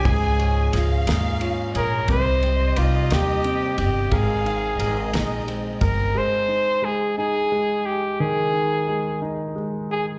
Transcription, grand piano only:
X:1
M:6/8
L:1/8
Q:3/8=59
K:Ab
V:1 name="Grand piano" clef=bass
[A,,A,F] A, F A, F2 | C, G, E G, C2 | A, E A, E A,2 | A, E A, E A,2 |
E, E A, E A,2 |]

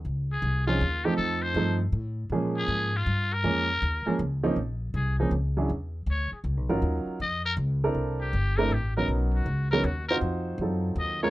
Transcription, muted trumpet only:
X:1
M:3/4
L:1/8
Q:"Swing" 1/4=159
K:Bbdor
V:1 name="Muted trumpet"
z A2 F2 G | =A c2 z3 | z A2 F2 B- | B4 z2 |
[K:Bbm] z2 A E z2 | z2 ^c ^G z2 | z2 e B z2 | z =G2 B G B |
z ^F2 ^A F A | z4 e d |]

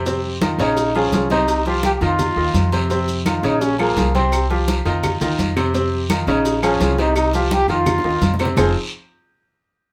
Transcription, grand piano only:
X:1
M:4/4
L:1/8
Q:1/4=169
K:Fm
V:1 name="Grand piano"
[C,Cc]2 [E,EF] [D,Dd]2 [F,FA] [F,FA] [C,Cc]- | [C,Cc] [F,FG]2 [E,EF]2 [E,EF]2 [C,Cc] | [C,Cc]2 [E,EF] [D,Dd]2 [F,FA] [F,FA] [C,Cc]- | [C,Cc] [F,FG]2 [E,EF]2 [E,EF]2 [C,Cc] |
[C,Cc]2 [E,EF] [D,Dd]2 [F,FA] [F,FA] [C,Cc]- | [C,Cc] [F,FG]2 [E,EF]2 [E,EF]2 [C,Cc] | [F,CEFAc] z6 z |]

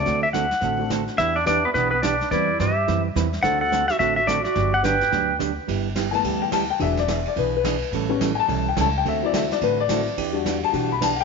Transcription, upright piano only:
X:1
M:4/4
L:1/8
Q:"Swing" 1/4=214
K:G
V:1 name="Upright piano"
z4 z [A,CDFA]3 | z2 [B,DEGB] z4 z | [B,CEGB] z6 z | [CDFAc]3 z4 z |
z2 [B,DFGB] z4 z | z3 [_a=a]2 g a g | e d e d B B3- | B z2 [_a=a]2 g a g |
e d e d B d3- | d z2 a2 b a [fg] |]
V:2 name="Upright piano"
z8 | z8 | z8 | z8 |
z8 | z3 [E,A,B,]3 z2 | [F,^G,D] z6 z | z [G,B,^C] z6 |
z [F,CE]3 z2 [F,CE] z | z [G,DF]3 [G,DF] z3 |]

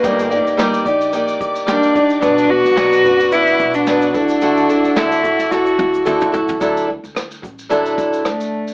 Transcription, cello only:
X:1
M:4/4
L:1/16
Q:"Swing 16ths" 1/4=110
K:Dmix
V:1 name="Cello"
_B,6 z6 D4 | D2 F6 E3 D3 D2- | D4 E4 F6 z2 | z12 A,4 |]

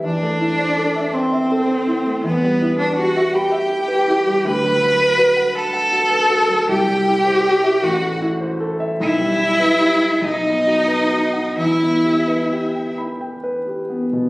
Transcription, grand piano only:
X:1
M:6/8
L:1/16
Q:3/8=53
K:Em
V:1 name="Grand piano"
E,, A, E c A e c' e A c E A, | E,, G, E B G e b e G B E G, | D,, F, F B F f b f F B F F, | C,, G, E c G e A,,, A, E c A e |
B,,, G, E B G e B,,, B, F B F f | E,, B, G B G g b g B G B, B,, |]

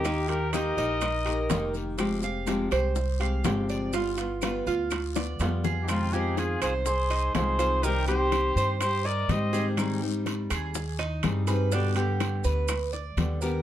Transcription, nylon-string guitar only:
X:1
M:4/4
L:1/8
Q:1/4=123
K:Fdor
V:1 name="Nylon-string guitar"
[E,B,EG] [B,EG] [E,B,EG] [B,EG] z [B,EG] [E,B,EG]2 | [C,F,A,CG] [A,CG] [C,F,A,CG] [A,CG] z [A,CG] [C,F,A,CG]2 | [G,=B,F] [B,F] [G,B,F] [B,F] z [B,F] [G,B,F]2 | [C,E,A,CF] [E,A,CF]3 z2 [E,A,CF] [E,A,CF] |
[C,E,G,CG] [E,G,CG]3 z2 [E,G,CG] [E,G,CG] | [E,G,CEA] [G,CE]3 z2 [G,CEA] [G,CEA] | [=B,,D,G,=B,G] [D,G,B,G]3 z2 [D,G,B,G] [D,G,B,G] |]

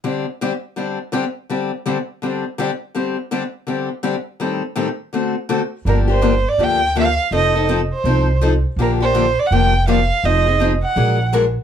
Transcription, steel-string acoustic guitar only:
X:1
M:4/4
L:1/16
Q:"Swing" 1/4=165
K:Dphr
V:1 name="Steel-string acoustic guitar"
[D,G,CDG]2 z2 [D,G,CDG] z3 [D,G,CDG]2 z2 [D,G,CDG] z3 | [D,G,CDG]2 z2 [D,G,CDG] z3 [D,G,CDG]2 z2 [D,G,CDG] z3 | [D,G,CDG]2 z2 [D,G,CDG] z3 [D,G,CDG]2 z2 [D,G,CDG] z3 | [A,,E,G,CGA]2 z2 [A,,E,G,CGA] z3 [D,A,C^FA]2 z2 [D,A,CFA] z3 |
[D,F,B,DG]2 [B,DG]2 [D,F,B,DG] z3 [D,F,B,DG]2 z2 [D,F,B,DG] z3 | [F,CEA]2 [CEA]2 [F,CEA] z3 [F,CEA]2 z2 [F,CEA] z3 | [D,F,B,DG]2 [B,DG]2 [D,F,B,DG] z3 [D,F,B,DG]2 z2 [D,F,B,DG] z3 | [F,CE_A]2 [CEA]2 [F,CEA] z3 [^F,_A,DAB]2 z2 [F,A,DAB] z3 |]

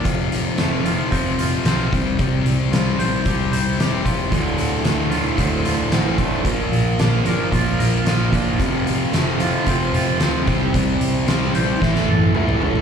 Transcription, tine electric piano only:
X:1
M:4/4
L:1/8
Q:1/4=112
K:Cmix
V:1 name="Tine electric piano" clef=bass
F,,,2 F,,,2 F,,, F,,, =B,,, C,, | C,, C,, C,, B,,, C,, C,, E,,,2 | D,,2 D,,2 D,, D,, A,,,2 | B,,, B,,, B,,, G,,, B,,, B,,, B,,,2 |
F,,,2 F,,,2 F,,, F,,, D,, C,, | C,, C,, C,, B,,, A,,, A,,, ^C,,2 |]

